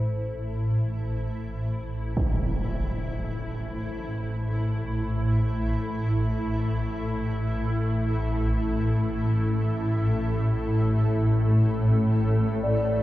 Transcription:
Already playing: synth drone A1 A2, ambient pad A3 E4 A4, singing bowl C5
2.17 impact
12.64 singing bowl D5

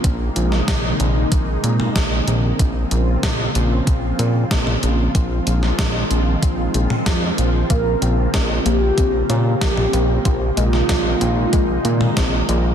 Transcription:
Already playing: analog synth pad A#3
0.04 analog synth bass A#1, analog synth pad C3 D#3 G#3 D#4, kick, closed hi-hat
0.36 analog synth bass A#1, closed hi-hat
0.52 snare
0.68 analog synth bass A#1, kick, snare, closed hi-hat
1.00 analog synth bass A#1, closed hi-hat
1.32 analog synth bass A#1, kick, closed hi-hat
1.64 analog synth bass A#2, closed hi-hat
1.80 mid tom
1.96 analog synth bass A#1, kick, snare, closed hi-hat
2.28 analog synth bass A#1, closed hi-hat
2.59 analog synth bass A#1, analog synth pad C#3 F3 C4 F4, kick, closed hi-hat
2.91 analog synth bass A#1, closed hi-hat
3.23 analog synth bass A#1, kick, snare, closed hi-hat
3.55 analog synth bass A#1, closed hi-hat
3.87 analog synth bass A#1, kick, closed hi-hat
4.19 analog synth bass A#2, closed hi-hat, mid tom
4.51 analog synth bass A#1, kick, snare, closed hi-hat
4.67 mid tom
4.83 analog synth bass A#1, closed hi-hat
5.15 analog synth bass A#1, analog synth pad D#3 G#3 C4, kick, closed hi-hat
5.47 analog synth bass A#1, closed hi-hat
5.63 snare
5.79 analog synth bass A#1, kick, snare, closed hi-hat
6.11 analog synth bass A#1, closed hi-hat
6.42 analog synth bass A#1, kick, closed hi-hat
6.74 analog synth bass A#1, closed hi-hat
6.90 mid tom
7.06 analog synth bass F2, kick, snare, closed hi-hat
7.38 analog synth bass A#1, closed hi-hat
7.70 analog synth bass A#1, analog synth pad C#3 A#3, synth arpeggio sound A#3, analog synth lead A#4, kick, closed hi-hat
8.02 analog synth bass A#1, synth arpeggio sound C4, closed hi-hat
8.34 analog synth bass A#1, synth arpeggio sound C#4, kick, snare, closed hi-hat
8.65 analog synth bass A#1, synth arpeggio sound A#3, analog synth lead G4, closed hi-hat
8.98 analog synth bass A#1, synth arpeggio sound C4, kick, closed hi-hat
9.29 analog synth bass A#2, synth arpeggio sound C#4, closed hi-hat, mid tom
9.61 analog synth bass A#1, synth arpeggio sound A#3, analog synth lead G4, kick, snare, closed hi-hat
9.77 mid tom
9.93 analog synth bass A#1, synth arpeggio sound C4, closed hi-hat
10.25 analog synth bass A#1, analog synth pad C3 D#3 G#3 D#4, synth arpeggio sound C4, kick, closed hi-hat
10.57 analog synth bass A#1, synth arpeggio sound G#3, analog synth lead F4, closed hi-hat
10.73 snare
10.89 analog synth bass A#1, synth arpeggio sound A#3, kick, snare, closed hi-hat
11.21 analog synth bass A#1, synth arpeggio sound C4, closed hi-hat
11.53 analog synth bass A#1, synth arpeggio sound G#3, kick, closed hi-hat
11.85 analog synth bass A#2, synth arpeggio sound A#3, closed hi-hat
12.01 mid tom
12.17 analog synth bass A#1, synth arpeggio sound C4, kick, snare, closed hi-hat
12.49 analog synth bass A#1, synth arpeggio sound G#3, closed hi-hat

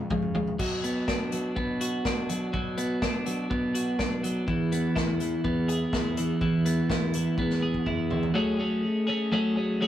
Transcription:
0.10 fingered electric bass C#3, clean electric guitar F3 G#3, kick, mid tom
0.22 mid tom
0.35 clean electric guitar F3 G#3, floor tom
0.47 floor tom
0.59 fingered electric bass B2, clean electric guitar F#3, kick, crash
0.84 clean electric guitar B3, closed hi-hat
1.08 fingered electric bass B2, clean electric guitar D4, kick, snare
1.32 clean electric guitar F#3, closed hi-hat
1.56 fingered electric bass B2, clean electric guitar B3, kick
1.81 clean electric guitar F#4, closed hi-hat
2.05 fingered electric bass B2, clean electric guitar D4, kick, snare
2.29 clean electric guitar F#3, closed hi-hat
2.53 fingered electric bass B2, clean electric guitar F#3, kick
2.77 clean electric guitar B3, closed hi-hat
3.02 fingered electric bass B2, clean electric guitar D4, kick, snare
3.26 clean electric guitar F#3, closed hi-hat
3.50 fingered electric bass B2, clean electric guitar B3, kick
3.75 clean electric guitar F#4, closed hi-hat
3.99 fingered electric bass B1, clean electric guitar D4, kick, snare
4.23 clean electric guitar F#3, closed hi-hat
4.47 fingered electric bass E2, clean electric guitar E3, kick
4.72 clean electric guitar B3, closed hi-hat
4.96 fingered electric bass E2, clean electric guitar E4, kick, snare
5.20 clean electric guitar E3, closed hi-hat
5.44 fingered electric bass E2, clean electric guitar B3, kick
5.68 clean electric guitar G#4, closed hi-hat
5.93 fingered electric bass E2, clean electric guitar E4, kick, snare
6.17 clean electric guitar E3, closed hi-hat
6.41 fingered electric bass E2, clean electric guitar E3, kick
6.66 clean electric guitar B3, closed hi-hat
6.89 fingered electric bass E2, clean electric guitar E4, kick, snare
7.14 clean electric guitar E3, closed hi-hat
7.37 fingered electric bass E2, clean electric guitar B3, kick, high tom
7.50 snare
7.62 clean electric guitar G#4
7.74 kick
7.86 fingered electric bass E2, clean electric guitar E4, kick, mid tom
8.11 clean electric guitar E3, floor tom
8.23 floor tom
8.34 clean electric guitar F#3 A3 C#4 G#4
8.59 clean electric guitar A3 C#4 G#4
9.07 clean electric guitar A3 C#4 G#4
9.32 clean electric guitar F#3 A3 C#4 G#4
9.56 clean electric guitar A3 C#4 G#4
9.80 clean electric guitar F#3 A3 C#4 G#4

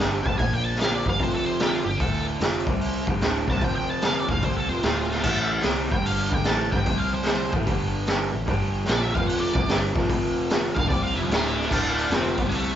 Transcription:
Already playing: overdriven electric guitar G2
0.00 fingered electric bass G1, overdriven electric guitar D3 G3, snare
0.23 fingered electric bass F1, overdriven electric guitar F2 C3 F3, lead electric guitar A5, kick
0.38 fingered electric bass A#1, overdriven electric guitar A#2 F3 A#3, lead electric guitar G#5, kick, open hi-hat
0.54 lead electric guitar G5
0.65 lead electric guitar A5
0.75 snare
0.80 lead electric guitar F5, snare, open hi-hat
0.95 lead electric guitar D5
1.06 fingered electric bass G1, overdriven electric guitar G2 D3 G3, lead electric guitar F5, kick
1.20 fingered electric bass F1, overdriven electric guitar F2 C3 F3, lead electric guitar C5, kick, open hi-hat
1.35 lead electric guitar A4
1.46 lead electric guitar C5
1.59 lead electric guitar G4, snare, open hi-hat
1.74 lead electric guitar F4
1.85 fingered electric bass G1, overdriven electric guitar G2 D3, lead electric guitar G4
1.97 fingered electric bass D1, overdriven electric guitar D2 A2 D3, lead electric guitar A4, kick, open hi-hat
2.40 fingered electric bass F1, overdriven electric guitar F2 C3 F3, snare, open hi-hat
2.67 fingered electric bass C2, overdriven electric guitar C3 G3 C4, kick
2.81 open hi-hat
3.06 fingered electric bass G1, overdriven electric guitar G2 D3 G3, kick
3.21 fingered electric bass D1, overdriven electric guitar D2 A2 D3, snare, open hi-hat
3.47 fingered electric bass C2, overdriven electric guitar C3 G3 C4, lead electric guitar A5, kick, snare
3.61 fingered electric bass F1, overdriven electric guitar F2 C3 F3, lead electric guitar G5, kick, open hi-hat
3.76 lead electric guitar G5
3.90 lead electric guitar A5
4.02 lead electric guitar F5, snare, open hi-hat
4.20 lead electric guitar D5
4.28 fingered electric bass D1, overdriven electric guitar D2 A2 D3, lead electric guitar F5, kick
4.42 fingered electric bass C2, overdriven electric guitar C3 G3 C4, lead electric guitar C5, kick, open hi-hat
4.56 lead electric guitar A4
4.69 fingered electric bass F1, overdriven electric guitar F2 C3 F3, lead electric guitar C5
4.83 fingered electric bass D1, overdriven electric guitar D2 A2 D3, lead electric guitar F4, snare, open hi-hat
4.97 lead electric guitar F4
5.11 lead electric guitar F4, snare
5.23 fingered electric bass A1, overdriven electric guitar A2 E3 A3, lead electric guitar A4, kick, crash
5.59 snare, open hi-hat
5.63 fingered electric bass C2, overdriven electric guitar C3 G3 C4, snare
5.89 fingered electric bass G1, overdriven electric guitar G2 D3 G3, lead electric guitar G5, kick
6.06 lead electric guitar F5, open hi-hat
6.30 fingered electric bass D2, overdriven electric guitar D3 A3 D4, lead electric guitar G5, kick
6.44 fingered electric bass A1, overdriven electric guitar A2 E3 A3, lead electric guitar A5, snare, open hi-hat
6.72 fingered electric bass G1, overdriven electric guitar G2 D3 G3, lead electric guitar G5, kick, snare
6.85 fingered electric bass C2, overdriven electric guitar C3 G3 C4, kick, open hi-hat
6.99 lead electric guitar F5
7.13 lead electric guitar C5
7.22 snare, open hi-hat
7.26 snare
7.51 fingered electric bass A1, overdriven electric guitar A2 E3 A3, kick
7.64 fingered electric bass G1, overdriven electric guitar G2 D3 G3, kick, open hi-hat
8.07 snare, open hi-hat
8.33 fingered electric bass A1, overdriven electric guitar A2 E3
8.46 fingered electric bass G1, overdriven electric guitar G2 D3 G3, kick, open hi-hat
8.84 fingered electric bass A#1, overdriven electric guitar A#2 F3 A#3, lead electric guitar D5, snare, open hi-hat
8.89 snare
9.03 lead electric guitar E5
9.13 fingered electric bass F1, overdriven electric guitar F2 C3 F3, lead electric guitar F5, kick
9.28 lead electric guitar F#5, open hi-hat
9.40 lead electric guitar D5
9.53 fingered electric bass C2, overdriven electric guitar C3 G3 C4, kick
9.67 fingered electric bass G1, overdriven electric guitar G2 D3 G3, snare, open hi-hat
9.94 fingered electric bass F1, overdriven electric guitar F2 C3 F3, kick, snare
10.08 fingered electric bass F1, overdriven electric guitar F2 C3 F3, kick, open hi-hat
10.50 snare, open hi-hat
10.74 fingered electric bass D1, overdriven electric guitar D2 A2 D3, lead electric guitar F5, kick
10.88 fingered electric bass C2, overdriven electric guitar C3 G3 C4, lead electric guitar D5, kick, open hi-hat
11.02 lead electric guitar F5
11.14 fingered electric bass F1, overdriven electric guitar F2 C3 F3, lead electric guitar E4 C5
11.29 fingered electric bass D1, overdriven electric guitar D2 A2 D3, lead electric guitar F5, snare, open hi-hat
11.43 lead electric guitar A5
11.58 lead electric guitar D4, snare
11.70 fingered electric bass D1, overdriven electric guitar D2 A2 D3, kick, crash
11.98 open hi-hat
12.10 fingered electric bass F1, overdriven electric guitar F2 C3 F3, snare, open hi-hat
12.15 lead electric guitar C4
12.37 fingered electric bass C2, overdriven electric guitar C3 G3 C4, lead electric guitar B3, kick, open hi-hat
12.49 lead electric guitar G#3, open hi-hat
12.56 lead electric guitar A3

